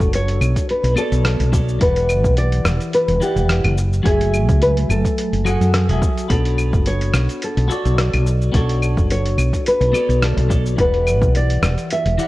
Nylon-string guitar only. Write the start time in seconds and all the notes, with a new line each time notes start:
Already playing: A4
0.15 C#5
0.71 B4
0.98 A4
1.82 B4
2.38 D5
2.95 B4
3.23 G4
4.06 G#4
4.62 B4
4.91 A4
6.31 A4
6.87 C#5
7.44 A4
7.72 F#4
8.56 A4
9.12 C#5
9.68 B4
10.24 A4
10.80 B4
11.37 D5
11.93 E5